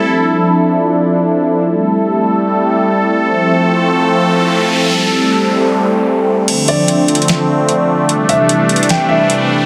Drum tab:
CC |------------------------|------------------------|------------------------|------------------------|
HH |------------------------|------------------------|------------------------|------------------------|
SD |------------------------|------------------------|------------------------|------------------------|

CC |x-----------------------|------------------------|
HH |x--x--x--xxxx-----x-----|x--x--x--xxxx-----x-----|
SD |------------o-----------|------------o-----------|